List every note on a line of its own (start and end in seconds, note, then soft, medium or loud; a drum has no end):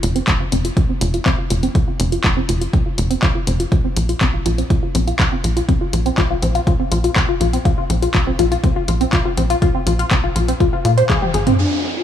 0.03 0.21 F1 medium
0.03 0.09 F4 medium
0.03 closed hi-hat loud
0.16 0.19 C4 medium
0.16 closed hi-hat medium
0.27 0.46 F1 medium
0.27 0.34 F4 medium
0.27 kick loud
0.27 clap loud
0.27 closed hi-hat medium
0.40 0.46 F4 medium
0.52 0.70 F1 medium
0.52 0.56 C4 medium
0.52 closed hi-hat medium
0.65 0.71 F4 medium
0.65 closed hi-hat medium
0.77 0.83 F4 medium
0.77 kick loud
0.77 closed hi-hat medium
0.89 0.93 C4 medium
1.01 1.19 F1 loud
1.01 1.08 F4 medium
1.01 closed hi-hat loud
1.14 1.20 F4 medium
1.14 closed hi-hat medium
1.26 1.30 C4 medium
1.26 kick loud
1.26 clap loud
1.26 closed hi-hat medium
1.38 1.45 F4 medium
1.50 1.69 F1 medium
1.50 1.57 F4 medium
1.50 closed hi-hat medium
1.63 1.67 C4 medium
1.63 closed hi-hat medium
1.75 1.82 F4 medium
1.75 kick loud
1.75 closed hi-hat medium
1.88 1.94 F4 medium
2.00 2.18 F1 loud
2.00 2.04 C4 medium
2.00 closed hi-hat loud
2.12 2.18 F4 medium
2.12 closed hi-hat medium
2.24 2.42 F1 medium
2.24 2.31 F4 medium
2.24 kick loud
2.24 clap loud
2.24 closed hi-hat medium
2.37 2.41 C4 medium
2.49 2.67 F1 medium
2.49 2.55 F4 medium
2.49 closed hi-hat medium
2.61 2.68 F4 medium
2.61 closed hi-hat medium
2.73 2.77 C4 medium
2.73 kick loud
2.73 closed hi-hat medium
2.86 2.92 F4 medium
2.98 3.16 F1 medium
2.98 3.04 F4 medium
2.98 closed hi-hat loud
3.10 3.14 C4 medium
3.10 closed hi-hat medium
3.22 3.29 F4 medium
3.22 kick loud
3.22 clap loud
3.22 closed hi-hat medium
3.35 3.41 F4 medium
3.47 3.65 F1 medium
3.47 3.51 C4 medium
3.47 closed hi-hat medium
3.60 3.66 F4 medium
3.60 closed hi-hat medium
3.72 3.78 F4 medium
3.72 kick loud
3.72 closed hi-hat medium
3.84 3.88 C4 medium
3.96 4.15 A#1 medium
3.96 4.03 F4 medium
3.96 closed hi-hat loud
4.09 4.15 F4 medium
4.09 closed hi-hat medium
4.21 4.39 A#1 loud
4.21 4.25 C4 medium
4.21 kick loud
4.21 clap loud
4.21 closed hi-hat medium
4.34 4.40 F4 medium
4.46 4.64 A#1 medium
4.46 4.52 F4 medium
4.46 closed hi-hat medium
4.58 4.62 C4 medium
4.58 closed hi-hat medium
4.70 4.77 F4 medium
4.70 kick loud
4.70 closed hi-hat medium
4.83 4.89 F4 medium
4.95 5.13 A#1 medium
4.95 4.99 C4 medium
4.95 closed hi-hat loud
5.07 5.13 F4 medium
5.07 closed hi-hat medium
5.19 5.26 F4 medium
5.19 kick loud
5.19 clap loud
5.19 closed hi-hat medium
5.32 5.36 C4 medium
5.44 5.62 A#1 medium
5.44 5.50 F4 medium
5.44 closed hi-hat medium
5.57 5.63 F4 medium
5.57 closed hi-hat medium
5.69 5.72 C4 medium
5.69 kick loud
5.69 closed hi-hat medium
5.81 5.87 F4 medium
5.93 6.11 A#1 medium
5.93 6.00 F4 medium
5.93 closed hi-hat loud
6.06 6.09 C4 medium
6.06 closed hi-hat medium
6.18 6.36 A#1 medium
6.18 6.24 F4 medium
6.18 kick loud
6.18 clap loud
6.18 closed hi-hat medium
6.30 6.36 F4 medium
6.42 6.60 A#1 medium
6.42 6.46 C4 medium
6.42 closed hi-hat medium
6.55 6.61 F4 medium
6.55 closed hi-hat medium
6.67 6.73 F4 medium
6.67 kick loud
6.67 closed hi-hat medium
6.80 6.83 C4 medium
6.92 7.10 A#1 loud
6.92 6.98 F4 medium
6.92 closed hi-hat loud
7.04 7.10 F4 medium
7.04 closed hi-hat medium
7.16 7.20 C4 medium
7.16 kick loud
7.16 clap loud
7.16 closed hi-hat medium
7.29 7.35 F4 medium
7.41 7.59 A#1 medium
7.41 7.47 F4 medium
7.41 closed hi-hat medium
7.53 7.57 C4 medium
7.53 closed hi-hat medium
7.65 7.72 F4 medium
7.65 kick loud
7.65 closed hi-hat medium
7.78 7.84 F4 medium
7.90 8.08 A#1 loud
7.90 7.94 C4 medium
7.90 closed hi-hat loud
8.02 8.09 F4 medium
8.02 closed hi-hat medium
8.14 8.33 A#1 loud
8.14 8.21 F4 medium
8.14 kick loud
8.14 clap loud
8.14 closed hi-hat medium
8.27 8.31 C4 medium
8.39 8.57 A#1 medium
8.39 8.45 F4 medium
8.39 closed hi-hat medium
8.52 8.58 F4 medium
8.52 closed hi-hat medium
8.64 8.67 C4 medium
8.64 kick loud
8.64 closed hi-hat medium
8.76 8.82 F4 medium
8.88 9.06 A#1 loud
8.88 8.95 F4 medium
8.88 closed hi-hat loud
9.01 9.04 C4 medium
9.01 closed hi-hat medium
9.13 9.19 F4 medium
9.13 kick loud
9.13 clap loud
9.13 closed hi-hat medium
9.25 9.32 F4 medium
9.37 9.56 A#1 medium
9.37 9.41 C4 medium
9.37 closed hi-hat medium
9.50 9.56 F4 medium
9.50 closed hi-hat medium
9.62 9.68 F4 medium
9.62 kick loud
9.62 closed hi-hat medium
9.75 9.78 C4 medium
9.87 10.05 A#1 loud
9.87 9.93 F4 medium
9.87 closed hi-hat loud
9.99 10.05 F4 medium
9.99 closed hi-hat medium
10.11 10.29 A#1 medium
10.11 10.15 C4 medium
10.11 kick loud
10.11 clap loud
10.11 closed hi-hat medium
10.24 10.30 F4 medium
10.36 10.54 A#1 medium
10.36 10.42 F4 medium
10.36 closed hi-hat medium
10.48 10.52 C4 medium
10.48 closed hi-hat medium
10.60 10.67 F4 medium
10.60 kick loud
10.60 closed hi-hat medium
10.73 10.79 F4 medium
10.85 11.03 A#2 medium
10.85 10.91 F4 medium
10.85 closed hi-hat loud
10.98 11.04 C5 loud
10.98 closed hi-hat medium
11.10 11.19 G#4 loud
11.10 kick loud
11.10 clap loud
11.10 closed hi-hat medium
11.10 high tom medium
11.22 11.26 G4 medium
11.22 high tom medium
11.34 11.52 G#1 loud
11.34 11.41 G#4 medium
11.34 closed hi-hat medium
11.47 11.53 C4 medium
11.47 closed hi-hat medium
11.47 mid tom medium
11.59 11.84 D4 loud
11.59 crash medium
11.59 downlifter medium
11.96 12.03 F4 medium